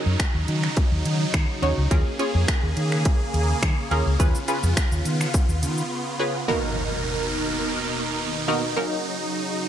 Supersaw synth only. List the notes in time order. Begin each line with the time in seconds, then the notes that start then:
Already playing: C#3 F#3 D#4
1.91 A#3 G#4
4.20 B3 F4
6.48 D#2 B2 D#4 A#4
8.77 C#3 F#3